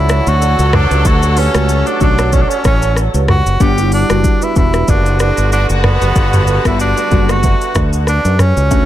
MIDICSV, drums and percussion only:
0, 0, Header, 1, 2, 480
1, 0, Start_track
1, 0, Tempo, 638298
1, 790, Time_signature, 4, 2, 24, 8
1, 6659, End_track
2, 0, Start_track
2, 0, Title_t, "Drums"
2, 67, Note_on_c, 9, 82, 62
2, 72, Note_on_c, 9, 37, 101
2, 143, Note_off_c, 9, 82, 0
2, 147, Note_off_c, 9, 37, 0
2, 202, Note_on_c, 9, 82, 57
2, 277, Note_off_c, 9, 82, 0
2, 315, Note_on_c, 9, 82, 66
2, 390, Note_off_c, 9, 82, 0
2, 444, Note_on_c, 9, 82, 54
2, 519, Note_off_c, 9, 82, 0
2, 550, Note_on_c, 9, 37, 104
2, 550, Note_on_c, 9, 45, 105
2, 626, Note_off_c, 9, 37, 0
2, 626, Note_off_c, 9, 45, 0
2, 685, Note_on_c, 9, 82, 52
2, 760, Note_off_c, 9, 82, 0
2, 790, Note_on_c, 9, 36, 125
2, 790, Note_on_c, 9, 82, 85
2, 865, Note_off_c, 9, 36, 0
2, 865, Note_off_c, 9, 82, 0
2, 922, Note_on_c, 9, 82, 58
2, 997, Note_off_c, 9, 82, 0
2, 1028, Note_on_c, 9, 46, 55
2, 1028, Note_on_c, 9, 82, 57
2, 1103, Note_off_c, 9, 46, 0
2, 1103, Note_off_c, 9, 82, 0
2, 1162, Note_on_c, 9, 37, 111
2, 1162, Note_on_c, 9, 82, 56
2, 1237, Note_off_c, 9, 37, 0
2, 1237, Note_off_c, 9, 82, 0
2, 1270, Note_on_c, 9, 82, 78
2, 1345, Note_off_c, 9, 82, 0
2, 1403, Note_on_c, 9, 82, 57
2, 1479, Note_off_c, 9, 82, 0
2, 1508, Note_on_c, 9, 82, 51
2, 1512, Note_on_c, 9, 36, 99
2, 1584, Note_off_c, 9, 82, 0
2, 1587, Note_off_c, 9, 36, 0
2, 1643, Note_on_c, 9, 82, 50
2, 1644, Note_on_c, 9, 37, 94
2, 1718, Note_off_c, 9, 82, 0
2, 1720, Note_off_c, 9, 37, 0
2, 1749, Note_on_c, 9, 82, 74
2, 1752, Note_on_c, 9, 36, 93
2, 1824, Note_off_c, 9, 82, 0
2, 1827, Note_off_c, 9, 36, 0
2, 1885, Note_on_c, 9, 82, 52
2, 1960, Note_off_c, 9, 82, 0
2, 1988, Note_on_c, 9, 82, 63
2, 1992, Note_on_c, 9, 36, 91
2, 1993, Note_on_c, 9, 37, 93
2, 2063, Note_off_c, 9, 82, 0
2, 2067, Note_off_c, 9, 36, 0
2, 2068, Note_off_c, 9, 37, 0
2, 2122, Note_on_c, 9, 82, 59
2, 2198, Note_off_c, 9, 82, 0
2, 2229, Note_on_c, 9, 37, 87
2, 2235, Note_on_c, 9, 82, 70
2, 2305, Note_off_c, 9, 37, 0
2, 2310, Note_off_c, 9, 82, 0
2, 2363, Note_on_c, 9, 82, 55
2, 2439, Note_off_c, 9, 82, 0
2, 2469, Note_on_c, 9, 37, 100
2, 2469, Note_on_c, 9, 45, 104
2, 2545, Note_off_c, 9, 37, 0
2, 2545, Note_off_c, 9, 45, 0
2, 2604, Note_on_c, 9, 82, 53
2, 2680, Note_off_c, 9, 82, 0
2, 2710, Note_on_c, 9, 36, 127
2, 2710, Note_on_c, 9, 82, 80
2, 2785, Note_off_c, 9, 36, 0
2, 2785, Note_off_c, 9, 82, 0
2, 2841, Note_on_c, 9, 82, 58
2, 2917, Note_off_c, 9, 82, 0
2, 2947, Note_on_c, 9, 46, 54
2, 2947, Note_on_c, 9, 82, 57
2, 3022, Note_off_c, 9, 46, 0
2, 3022, Note_off_c, 9, 82, 0
2, 3082, Note_on_c, 9, 37, 113
2, 3082, Note_on_c, 9, 82, 58
2, 3157, Note_off_c, 9, 37, 0
2, 3157, Note_off_c, 9, 82, 0
2, 3190, Note_on_c, 9, 36, 100
2, 3190, Note_on_c, 9, 82, 76
2, 3265, Note_off_c, 9, 36, 0
2, 3265, Note_off_c, 9, 82, 0
2, 3322, Note_on_c, 9, 82, 56
2, 3397, Note_off_c, 9, 82, 0
2, 3428, Note_on_c, 9, 82, 53
2, 3432, Note_on_c, 9, 36, 96
2, 3503, Note_off_c, 9, 82, 0
2, 3507, Note_off_c, 9, 36, 0
2, 3561, Note_on_c, 9, 82, 52
2, 3563, Note_on_c, 9, 37, 92
2, 3637, Note_off_c, 9, 82, 0
2, 3638, Note_off_c, 9, 37, 0
2, 3668, Note_on_c, 9, 82, 76
2, 3671, Note_on_c, 9, 36, 95
2, 3744, Note_off_c, 9, 82, 0
2, 3747, Note_off_c, 9, 36, 0
2, 3804, Note_on_c, 9, 82, 51
2, 3880, Note_off_c, 9, 82, 0
2, 3906, Note_on_c, 9, 82, 59
2, 3911, Note_on_c, 9, 37, 97
2, 3981, Note_off_c, 9, 82, 0
2, 3986, Note_off_c, 9, 37, 0
2, 4041, Note_on_c, 9, 82, 57
2, 4116, Note_off_c, 9, 82, 0
2, 4154, Note_on_c, 9, 82, 64
2, 4229, Note_off_c, 9, 82, 0
2, 4283, Note_on_c, 9, 82, 57
2, 4358, Note_off_c, 9, 82, 0
2, 4390, Note_on_c, 9, 37, 102
2, 4390, Note_on_c, 9, 45, 113
2, 4465, Note_off_c, 9, 37, 0
2, 4465, Note_off_c, 9, 45, 0
2, 4524, Note_on_c, 9, 82, 52
2, 4599, Note_off_c, 9, 82, 0
2, 4630, Note_on_c, 9, 36, 127
2, 4630, Note_on_c, 9, 82, 87
2, 4705, Note_off_c, 9, 36, 0
2, 4705, Note_off_c, 9, 82, 0
2, 4762, Note_on_c, 9, 45, 98
2, 4762, Note_on_c, 9, 82, 58
2, 4837, Note_off_c, 9, 45, 0
2, 4837, Note_off_c, 9, 82, 0
2, 4867, Note_on_c, 9, 82, 57
2, 4943, Note_off_c, 9, 82, 0
2, 5001, Note_on_c, 9, 36, 94
2, 5002, Note_on_c, 9, 82, 57
2, 5003, Note_on_c, 9, 37, 114
2, 5077, Note_off_c, 9, 36, 0
2, 5078, Note_off_c, 9, 37, 0
2, 5078, Note_off_c, 9, 82, 0
2, 5111, Note_on_c, 9, 82, 77
2, 5186, Note_off_c, 9, 82, 0
2, 5244, Note_on_c, 9, 82, 57
2, 5319, Note_off_c, 9, 82, 0
2, 5348, Note_on_c, 9, 82, 52
2, 5352, Note_on_c, 9, 36, 98
2, 5423, Note_off_c, 9, 82, 0
2, 5427, Note_off_c, 9, 36, 0
2, 5483, Note_on_c, 9, 82, 49
2, 5484, Note_on_c, 9, 37, 88
2, 5558, Note_off_c, 9, 82, 0
2, 5559, Note_off_c, 9, 37, 0
2, 5589, Note_on_c, 9, 82, 74
2, 5592, Note_on_c, 9, 36, 93
2, 5664, Note_off_c, 9, 82, 0
2, 5667, Note_off_c, 9, 36, 0
2, 5725, Note_on_c, 9, 82, 54
2, 5800, Note_off_c, 9, 82, 0
2, 5827, Note_on_c, 9, 45, 72
2, 5827, Note_on_c, 9, 82, 61
2, 5832, Note_on_c, 9, 36, 93
2, 5832, Note_on_c, 9, 37, 103
2, 5902, Note_off_c, 9, 45, 0
2, 5902, Note_off_c, 9, 82, 0
2, 5907, Note_off_c, 9, 36, 0
2, 5907, Note_off_c, 9, 37, 0
2, 5962, Note_on_c, 9, 82, 56
2, 6037, Note_off_c, 9, 82, 0
2, 6069, Note_on_c, 9, 37, 90
2, 6074, Note_on_c, 9, 82, 68
2, 6144, Note_off_c, 9, 37, 0
2, 6149, Note_off_c, 9, 82, 0
2, 6203, Note_on_c, 9, 82, 58
2, 6279, Note_off_c, 9, 82, 0
2, 6310, Note_on_c, 9, 37, 99
2, 6310, Note_on_c, 9, 45, 107
2, 6313, Note_on_c, 9, 82, 63
2, 6385, Note_off_c, 9, 37, 0
2, 6385, Note_off_c, 9, 45, 0
2, 6388, Note_off_c, 9, 82, 0
2, 6444, Note_on_c, 9, 82, 53
2, 6520, Note_off_c, 9, 82, 0
2, 6550, Note_on_c, 9, 36, 120
2, 6550, Note_on_c, 9, 82, 82
2, 6625, Note_off_c, 9, 36, 0
2, 6625, Note_off_c, 9, 82, 0
2, 6659, End_track
0, 0, End_of_file